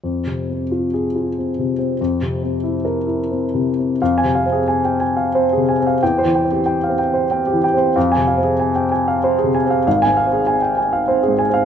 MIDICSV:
0, 0, Header, 1, 2, 480
1, 0, Start_track
1, 0, Key_signature, -4, "minor"
1, 0, Tempo, 662983
1, 24, Time_signature, 3, 2, 24, 8
1, 983, Tempo, 634249
1, 1943, Tempo, 684932
1, 3383, Tempo, 664452
1, 4823, Tempo, 641711
1, 6743, Tempo, 615385
1, 8622, End_track
2, 0, Start_track
2, 0, Title_t, "Upright piano"
2, 0, Program_c, 0, 0
2, 26, Note_on_c, 0, 41, 37
2, 161, Control_c, 0, 64, 127
2, 191, Note_on_c, 0, 48, 32
2, 362, Note_on_c, 0, 60, 28
2, 450, Note_off_c, 0, 48, 0
2, 518, Note_on_c, 0, 65, 35
2, 614, Note_off_c, 0, 60, 0
2, 679, Note_on_c, 0, 68, 44
2, 769, Note_off_c, 0, 65, 0
2, 835, Note_on_c, 0, 65, 33
2, 925, Note_off_c, 0, 68, 0
2, 1000, Note_on_c, 0, 60, 30
2, 1082, Note_off_c, 0, 65, 0
2, 1157, Note_on_c, 0, 48, 35
2, 1248, Note_off_c, 0, 60, 0
2, 1307, Note_on_c, 0, 60, 39
2, 1407, Note_off_c, 0, 48, 0
2, 1435, Note_off_c, 0, 41, 0
2, 1466, Note_off_c, 0, 60, 0
2, 1475, Note_on_c, 0, 41, 47
2, 1477, Control_c, 0, 64, 0
2, 1610, Control_c, 0, 64, 127
2, 1634, Note_on_c, 0, 48, 39
2, 1793, Note_on_c, 0, 60, 38
2, 1884, Note_off_c, 0, 48, 0
2, 1949, Note_on_c, 0, 64, 42
2, 2038, Note_off_c, 0, 60, 0
2, 2098, Note_on_c, 0, 70, 48
2, 2189, Note_off_c, 0, 64, 0
2, 2251, Note_on_c, 0, 64, 39
2, 2346, Note_off_c, 0, 70, 0
2, 2420, Note_on_c, 0, 60, 38
2, 2509, Note_off_c, 0, 64, 0
2, 2584, Note_on_c, 0, 48, 36
2, 2683, Note_off_c, 0, 60, 0
2, 2758, Note_on_c, 0, 60, 33
2, 2849, Note_off_c, 0, 48, 0
2, 2886, Note_off_c, 0, 41, 0
2, 2915, Note_off_c, 0, 60, 0
2, 2918, Note_on_c, 0, 77, 38
2, 2919, Note_on_c, 0, 41, 44
2, 2922, Control_c, 0, 64, 0
2, 3029, Note_on_c, 0, 80, 54
2, 3058, Control_c, 0, 64, 127
2, 3071, Note_on_c, 0, 48, 36
2, 3103, Note_off_c, 0, 77, 0
2, 3151, Note_on_c, 0, 77, 38
2, 3219, Note_off_c, 0, 80, 0
2, 3228, Note_on_c, 0, 60, 34
2, 3271, Note_on_c, 0, 68, 36
2, 3322, Note_off_c, 0, 48, 0
2, 3338, Note_off_c, 0, 77, 0
2, 3381, Note_on_c, 0, 80, 40
2, 3459, Note_off_c, 0, 68, 0
2, 3481, Note_off_c, 0, 60, 0
2, 3504, Note_on_c, 0, 79, 32
2, 3575, Note_off_c, 0, 80, 0
2, 3614, Note_on_c, 0, 80, 39
2, 3624, Note_off_c, 0, 79, 0
2, 3734, Note_on_c, 0, 77, 35
2, 3810, Note_off_c, 0, 80, 0
2, 3864, Note_on_c, 0, 60, 37
2, 3867, Note_on_c, 0, 72, 39
2, 3930, Note_off_c, 0, 77, 0
2, 3994, Note_on_c, 0, 68, 38
2, 4026, Note_on_c, 0, 48, 35
2, 4057, Note_off_c, 0, 72, 0
2, 4109, Note_on_c, 0, 80, 41
2, 4120, Note_off_c, 0, 60, 0
2, 4181, Note_off_c, 0, 68, 0
2, 4191, Note_on_c, 0, 60, 35
2, 4240, Note_on_c, 0, 77, 36
2, 4282, Note_off_c, 0, 48, 0
2, 4300, Note_off_c, 0, 80, 0
2, 4322, Note_off_c, 0, 41, 0
2, 4350, Note_off_c, 0, 60, 0
2, 4354, Note_off_c, 0, 77, 0
2, 4355, Note_on_c, 0, 79, 53
2, 4358, Control_c, 0, 64, 0
2, 4358, Note_on_c, 0, 40, 46
2, 4468, Note_on_c, 0, 72, 44
2, 4493, Control_c, 0, 64, 127
2, 4518, Note_on_c, 0, 52, 38
2, 4544, Note_off_c, 0, 79, 0
2, 4590, Note_on_c, 0, 79, 37
2, 4659, Note_off_c, 0, 72, 0
2, 4659, Note_on_c, 0, 60, 31
2, 4709, Note_on_c, 0, 67, 37
2, 4766, Note_off_c, 0, 52, 0
2, 4778, Note_off_c, 0, 79, 0
2, 4812, Note_on_c, 0, 79, 42
2, 4896, Note_off_c, 0, 67, 0
2, 4915, Note_off_c, 0, 60, 0
2, 4944, Note_on_c, 0, 77, 33
2, 4985, Note_on_c, 0, 60, 38
2, 5009, Note_off_c, 0, 79, 0
2, 5055, Note_on_c, 0, 79, 39
2, 5062, Note_off_c, 0, 77, 0
2, 5169, Note_on_c, 0, 72, 39
2, 5238, Note_off_c, 0, 60, 0
2, 5249, Note_off_c, 0, 79, 0
2, 5298, Note_on_c, 0, 79, 39
2, 5299, Note_on_c, 0, 60, 36
2, 5366, Note_off_c, 0, 72, 0
2, 5415, Note_on_c, 0, 67, 37
2, 5465, Note_on_c, 0, 52, 35
2, 5491, Note_off_c, 0, 79, 0
2, 5545, Note_on_c, 0, 79, 45
2, 5556, Note_off_c, 0, 60, 0
2, 5611, Note_off_c, 0, 67, 0
2, 5619, Note_on_c, 0, 60, 39
2, 5646, Note_on_c, 0, 72, 38
2, 5721, Note_off_c, 0, 52, 0
2, 5737, Note_off_c, 0, 79, 0
2, 5760, Note_off_c, 0, 40, 0
2, 5776, Note_off_c, 0, 72, 0
2, 5783, Note_off_c, 0, 60, 0
2, 5783, Note_on_c, 0, 77, 41
2, 5784, Note_on_c, 0, 41, 48
2, 5798, Control_c, 0, 64, 0
2, 5902, Note_on_c, 0, 80, 52
2, 5909, Control_c, 0, 64, 127
2, 5943, Note_on_c, 0, 48, 38
2, 5978, Note_off_c, 0, 77, 0
2, 6020, Note_on_c, 0, 77, 38
2, 6096, Note_on_c, 0, 60, 34
2, 6097, Note_off_c, 0, 80, 0
2, 6137, Note_on_c, 0, 68, 38
2, 6202, Note_off_c, 0, 48, 0
2, 6216, Note_off_c, 0, 77, 0
2, 6260, Note_on_c, 0, 80, 40
2, 6333, Note_off_c, 0, 68, 0
2, 6356, Note_off_c, 0, 60, 0
2, 6379, Note_on_c, 0, 79, 32
2, 6454, Note_off_c, 0, 80, 0
2, 6501, Note_on_c, 0, 80, 41
2, 6502, Note_off_c, 0, 79, 0
2, 6621, Note_on_c, 0, 77, 44
2, 6693, Note_off_c, 0, 80, 0
2, 6740, Note_on_c, 0, 60, 37
2, 6741, Note_on_c, 0, 72, 40
2, 6813, Note_off_c, 0, 77, 0
2, 6853, Note_on_c, 0, 68, 42
2, 6894, Note_on_c, 0, 48, 38
2, 6935, Note_off_c, 0, 72, 0
2, 6980, Note_on_c, 0, 80, 47
2, 6999, Note_off_c, 0, 60, 0
2, 7051, Note_off_c, 0, 68, 0
2, 7065, Note_on_c, 0, 60, 42
2, 7104, Note_on_c, 0, 77, 43
2, 7156, Note_off_c, 0, 48, 0
2, 7175, Note_off_c, 0, 80, 0
2, 7194, Note_off_c, 0, 41, 0
2, 7222, Note_off_c, 0, 77, 0
2, 7226, Note_off_c, 0, 60, 0
2, 7234, Note_on_c, 0, 77, 45
2, 7237, Note_on_c, 0, 32, 50
2, 7240, Control_c, 0, 64, 0
2, 7351, Note_on_c, 0, 80, 62
2, 7354, Control_c, 0, 64, 127
2, 7389, Note_on_c, 0, 44, 39
2, 7422, Note_off_c, 0, 77, 0
2, 7466, Note_on_c, 0, 77, 42
2, 7540, Note_off_c, 0, 80, 0
2, 7540, Note_on_c, 0, 60, 35
2, 7586, Note_on_c, 0, 68, 41
2, 7642, Note_off_c, 0, 44, 0
2, 7657, Note_off_c, 0, 77, 0
2, 7700, Note_on_c, 0, 80, 49
2, 7775, Note_off_c, 0, 68, 0
2, 7796, Note_off_c, 0, 60, 0
2, 7816, Note_on_c, 0, 79, 37
2, 7892, Note_off_c, 0, 80, 0
2, 7937, Note_on_c, 0, 80, 39
2, 7938, Note_off_c, 0, 79, 0
2, 8058, Note_on_c, 0, 77, 45
2, 8131, Note_off_c, 0, 80, 0
2, 8176, Note_on_c, 0, 72, 41
2, 8181, Note_on_c, 0, 60, 41
2, 8251, Note_off_c, 0, 77, 0
2, 8292, Note_on_c, 0, 68, 41
2, 8335, Note_on_c, 0, 44, 42
2, 8370, Note_off_c, 0, 72, 0
2, 8416, Note_on_c, 0, 80, 48
2, 8437, Note_off_c, 0, 60, 0
2, 8488, Note_off_c, 0, 68, 0
2, 8499, Note_on_c, 0, 60, 43
2, 8534, Note_on_c, 0, 77, 45
2, 8594, Note_off_c, 0, 44, 0
2, 8610, Note_off_c, 0, 80, 0
2, 8622, Note_off_c, 0, 32, 0
2, 8622, Note_off_c, 0, 60, 0
2, 8622, Note_off_c, 0, 77, 0
2, 8622, End_track
0, 0, End_of_file